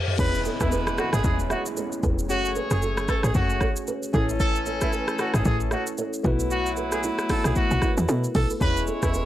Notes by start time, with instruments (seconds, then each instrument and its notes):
Already playing: reverse cymbal
0.08 floor tom
0.18 log drum bass E1, horn section G#3 E4 B4, tine electric piano B3 C#4 E4 G#4 C#5, trumpet B4, kick, crash, downlifter, shaker
0.35 shaker
0.45 nylon-string guitar A4 C#5, shaker
0.60 log drum bass E1, trumpet E4, nylon-string guitar G#4 B4, kick, cross-stick, shaker
0.72 nylon-string guitar G#4 B4, shaker
0.87 cross-stick, shaker
0.98 trumpet F#4, nylon-string guitar A4 C#5, cross-stick, shaker
1.13 log drum bass G#1, trumpet G#4, nylon-string guitar C#5 E5, cross-stick, shaker
1.23 log drum bass E1, tine electric piano B3 C#4 E4 G#4 C#5, trumpet G#4, kick, shaker
1.39 shaker
1.50 trumpet F#4, nylon-string guitar C#5 E5, cross-stick, shaker
1.66 shaker
1.77 nylon-string guitar G#4 C#5, shaker
1.92 shaker
2.03 log drum bass E1, nylon-string guitar G#4 B4, kick, shaker
2.19 shaker
2.28 log drum bass F#1, tine electric piano A3 C#4 F#4 G#4 C#5, horn section A3 G#4 C#5, trumpet F#4, shaker
2.45 shaker
2.55 nylon-string guitar G#4 B4, shaker
2.71 log drum bass F#1, nylon-string guitar F#4 A4, trumpet G#4, cross-stick, shaker
2.82 nylon-string guitar F#4 A4, shaker
2.97 cross-stick, shaker
3.08 nylon-string guitar G#4 B4, trumpet A4, kick, cross-stick, shaker
3.23 log drum bass A1, trumpet G#4, nylon-string guitar A4 C#5, cross-stick, shaker
3.34 log drum bass F#1, tine electric piano A3 C#4 F#4 G#4 C#5, trumpet F#4, kick, shaker
3.50 shaker
3.61 nylon-string guitar A4 C#5, kick, cross-stick, shaker
3.76 shaker
3.87 nylon-string guitar G#4 B4, shaker
4.03 shaker
4.13 log drum bass A1, horn section E3 C#4 A4, tine electric piano A3 C#4 E4 A4 C#5, nylon-string guitar E4 A4, trumpet G#4, kick, shaker
4.29 nylon-string guitar E4 G#4, shaker
4.40 trumpet A4, kick, shaker
4.56 shaker
4.66 nylon-string guitar A4 C#5, shaker
4.81 trumpet E4, nylon-string guitar G#4 B4, kick, cross-stick, shaker
4.93 nylon-string guitar G#4 B4, shaker
5.08 cross-stick, shaker
5.19 trumpet F#4, nylon-string guitar A4 C#5, cross-stick, shaker
5.34 log drum bass G#1, trumpet G#4, nylon-string guitar C#5 E5, cross-stick, shaker
5.44 log drum bass A1, tine electric piano A3 C#4 E4 A4 C#5, trumpet G#4, kick, shaker
5.60 shaker
5.71 trumpet F#4, nylon-string guitar C#5 E5, cross-stick, shaker
5.87 shaker
5.98 nylon-string guitar A4 C#5, shaker
6.13 shaker
6.23 log drum bass B1, horn section F#3 E4 B4, tine electric piano A3 B3 E4 F#4 B4, nylon-string guitar F#4 B4, kick, shaker
6.40 shaker
6.51 trumpet F#4, shaker
6.66 shaker
6.77 nylon-string guitar G#4 B4, shaker
6.92 nylon-string guitar F#4 A4, trumpet G#4, cross-stick, shaker
7.03 nylon-string guitar E4 G#4, shaker
7.19 cross-stick, shaker
7.29 nylon-string guitar D#4 F#4, trumpet A4, kick, cross-stick, open hi-hat, shaker
7.44 log drum bass B1, nylon-string guitar F#4 A4, trumpet G#4, cross-stick, shaker
7.54 tine electric piano A3 B3 E4 F#4 A#4, trumpet F#4, kick, shaker
7.63 tine electric piano B4
7.71 log drum bass B1, shaker
7.82 nylon-string guitar E4 G#4, kick, cross-stick, shaker
7.97 log drum bass E2, shaker
8.09 log drum bass B2, nylon-string guitar F#4 A4, shaker
8.24 shaker
8.35 log drum bass B1, nylon-string guitar F#4 A4, trumpet A4, kick, open hi-hat, shaker
8.50 nylon-string guitar G#4 B4, shaker
8.60 log drum bass E1, horn section G#3 E4 C#5, tine electric piano B3 C#4 E4 G#4 C#5, trumpet B4, kick, shaker
8.77 shaker
8.87 nylon-string guitar A4 C#5, shaker
9.03 log drum bass E1, trumpet E4, nylon-string guitar G#4 B4, kick, cross-stick, shaker
9.14 nylon-string guitar G#4 B4, shaker